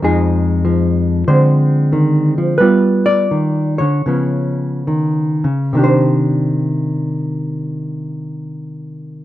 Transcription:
0.02 F2 F3 G#3 D#4 G#4
0.65 F3
1.28 D3 G#3 C4 C5
1.93 D#3
2.38 F3
2.58 G3 B3 B4
2.62 F4
3.06 D5
3.31 D#3
3.78 D3 C#5
4.06 C#3 F3 B3 C#4
4.87 D#3
5.44 C#3
5.73 C3 D#3
5.77 D4 G4
5.84 C5

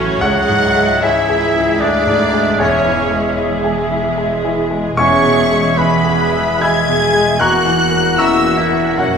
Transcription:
Already playing: A1 A2 C#3 F#3 A3 C#4 F#4 A4 B4 C#5
0.21 C#2 F#3 G#3 F#4 G#4 C#5 E5 F#5
0.49 G#2
0.76 G#3
1.02 E3 G#3 E4 G#4 C#5 E5
1.30 G#4
1.55 E4
1.80 D2 D3 G#3 D4 D5
2.07 G#2
2.34 G#3
2.58 E1 E2 C#3 G#3 C#4 E4 G#4 C#5
2.85 E3
3.11 G#3
3.38 E4
3.64 G#4
3.91 E4
4.18 G#3
4.44 E3
4.71 G#3
4.97 E1 E2 G#3 C#4 G#4 C#5 E5 G#5 C#6
5.24 B2
5.51 G#3
5.77 G#3 B3 E4 G#4 B4 E5 G#5 B5
6.04 G#4
6.33 E4
6.60 G#3 G#4 G#5 B5 E6 G#6
6.88 B2
7.13 G#3
7.39 E1 E2 A#3 F#4 A#4 F#5 A#5 C#6 F#6
7.65 E3
7.91 A#3
8.17 A#3 C#4 E4 F#4 E5 A#5 C#6 E6
8.45 F#4
8.57 E3 E4 E5
8.70 A#4
8.97 F#1 F#2 F#3 A#3 C#4 F#4 A#4 C#5 F#5

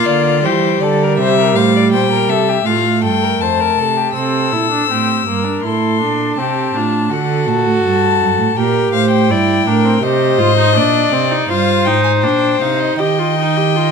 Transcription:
Already playing: A#3 F4
0.06 D3 D5
0.44 E3 G3 G4 C5
0.81 D3 A4 D5
1.03 A#4
1.18 C3 E5
1.22 C5
1.38 A#4
1.55 A2 C5 F5
1.76 D5
1.92 A#2 C5 G5
2.12 A#4
2.28 C3 A4 E5
2.49 G4
2.66 A2 A3 F4 F5
3.02 G2 A4 G5
3.23 A#4
3.40 F2 C5 A5
3.61 A#4
3.78 C3 A4
3.97 G4
4.15 C3 C4 A4 E6
4.52 A#2 E4
4.71 D4
4.89 A2 C4 G4
5.26 G2 A#3 A#4
5.44 D4
5.63 A2 E4 A4 C6
6.00 A#2 D4
6.37 C3 C4 G4 A5
6.75 A2 D4 F4
7.11 D3 F#4 A4 F#5
7.47 A#2 A5
7.65 A2
7.83 G2
8.19 F#2
8.38 A2
8.55 A#2 G4 A#4 G5
8.92 A2 C5 F5
9.11 G5
9.29 G2 E4 D5
9.65 A2 D4 A#4
9.85 C4
10.01 C3 G4 C5 D#5
10.38 G#2 F4
10.57 D#4
10.75 A#2 D4 D5
11.12 C3 C4
11.31 D#4
11.49 G2 F4 C5 F5
11.85 G#2 D#4 G5
12.04 G#5
12.22 A#2 D4 G5
12.61 C3 D#4 F5
12.80 D#5
12.99 D#3 G4 D#5 G5
13.19 F4
13.38 D#4
13.57 G4
13.76 F4

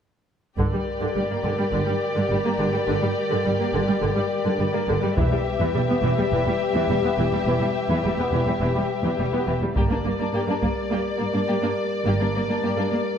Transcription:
0.58 G1 G2 D3 G3 G4 A#4 D5, taiko
0.73 G2 G3
1.01 G2 D3
1.16 G1 G2 G3
1.31 G2 A#3
1.44 G1 G2 D3
1.58 G2 G3
1.73 G1 G2 D3
1.86 G2 G3
2.15 G2 D3
2.30 G1 G2 G3
2.44 G2 A#3
2.59 G1 G2 D3
2.73 G2 G3
2.87 G1 G2 D3
3.02 G2 G3
3.30 G2 D3
3.45 G1 G2 G3
3.59 G2 A#3
3.74 G1 G2 D3
3.88 G2 G3
4.02 G1 G2 D3
4.16 G2 G3
4.45 G2 D3
4.59 G1 G2 G3
4.73 G2 A#3
4.88 G1 G2 D3
5.02 G2 G3
5.15 E1 E2 E3 G3 G4 B4 E5, taiko
5.31 E2 G3
5.60 E2 E3
5.74 E1 E2 G3
5.88 E2 B3
6.03 E1 E2 E3
6.18 E2 G3
6.32 E1 E2 E3
6.46 E2 G3
6.74 E2 E3
6.89 E1 E2 G3
7.04 E2 B3
7.18 E1 E2 E3
7.31 E2 G3
7.46 E1 E2 E3
7.60 E2 G3
7.89 E2 E3
8.03 E1 E2 G3
8.17 E2 B3
8.31 E1 E2 E3
8.46 E2 G3
8.61 E1 E2 E3
8.75 E2 G3
9.04 E2 E3
9.18 E1 E2 G3
9.33 E2 B3
9.47 E1 E2 E3
9.61 E2 G3
9.75 G1 G2 G3 A#3 G4 A#4 D5, taiko
9.90 G2 A#3 D4
10.04 G2 A#3
10.19 G2 A#3 D4
10.33 G2 A#3 G4
10.47 G2 A#3 D4
10.61 G2 A#3, taiko
10.91 G2 A#3 G4
11.18 G2 A#3
11.33 G2 A#3 D4
11.48 G2 A#3 G4
11.62 G2 A#3 D4
12.05 G1 G2 A#3 G4
12.20 G2 A#3 D4
12.34 G2 A#3
12.49 G2 A#3 D4
12.63 G2 A#3 G4
12.77 G2 A#3 D4
12.92 G2 A#3

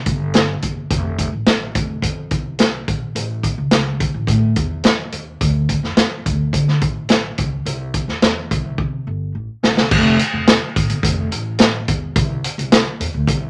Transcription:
0.06 G1, kick, closed hi-hat
0.34 snare, closed hi-hat
0.62 F#1, kick, closed hi-hat
0.90 F1, kick, closed hi-hat
1.19 kick, closed hi-hat
1.33 A1
1.46 A1, snare, closed hi-hat
1.75 F1, kick, closed hi-hat
2.02 F2, kick, closed hi-hat
2.31 C2, kick, closed hi-hat
2.59 snare, closed hi-hat
2.88 A#1, kick, closed hi-hat
3.15 A1, closed hi-hat
3.43 kick, closed hi-hat
3.58 C#2
3.71 C#2, snare, closed hi-hat
4.00 kick, closed hi-hat
4.14 A1
4.27 A2, kick, closed hi-hat
4.56 E2, kick, closed hi-hat
4.84 snare, closed hi-hat
5.12 D#2, closed hi-hat
5.41 D2, kick, closed hi-hat
5.69 kick, closed hi-hat
5.83 F2, snare
5.97 F2, snare, closed hi-hat
6.26 D2, kick, closed hi-hat
6.53 D3, kick, closed hi-hat
6.68 snare
6.81 A1, kick, closed hi-hat
7.09 snare, closed hi-hat
7.38 C#2, kick, closed hi-hat
7.66 C2, closed hi-hat
7.94 kick, closed hi-hat
8.08 E2, snare
8.22 E2, snare, closed hi-hat
8.51 C2, kick, closed hi-hat
8.78 C3, kick
9.07 G1
9.35 A1
9.63 A#1, snare
9.77 C2, snare
9.91 F1, kick, crash
10.19 closed hi-hat
10.33 F1
10.47 snare, closed hi-hat
10.76 A1, kick, closed hi-hat
10.89 G1, closed hi-hat
11.03 F1, kick, closed hi-hat
11.31 A1, closed hi-hat
11.58 snare, closed hi-hat
11.88 E1, kick, closed hi-hat
12.16 C2, kick, closed hi-hat
12.44 closed hi-hat
12.58 C2, closed hi-hat
12.72 snare, closed hi-hat
13.00 E2, closed hi-hat
13.14 D2
13.27 C2, kick, closed hi-hat

